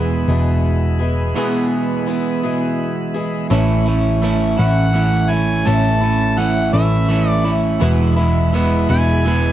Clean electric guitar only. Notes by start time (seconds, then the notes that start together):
Already playing: E2 B2 E3 G#3 B3 G#4
1.34 E2 B2 E3 G#3 B3 G#4
3.50 A2 E3 A3 C#4 E4
3.86 A3 C#4 E4
4.22 E3 A3 C#4 E4
4.57 A3 C#4 E4
4.93 E3 A3 C#4 E4
5.29 A3 C#4 E4
5.65 A2 E3 A3 C#4 E4
6.02 A3 C#4 E4
6.37 E3 A3 C#4 E4
6.73 A3 C#4 E4
7.09 E3 A3 C#4 E4
7.45 A3 C#4 E4
7.80 E2 B2 E3 G#3 B3 E4
8.17 E3 G#3 B3 E4
8.53 E3 G#3 B3 E4
8.89 E3 G#3 B3 E4
9.25 E3 G#3 B3 E4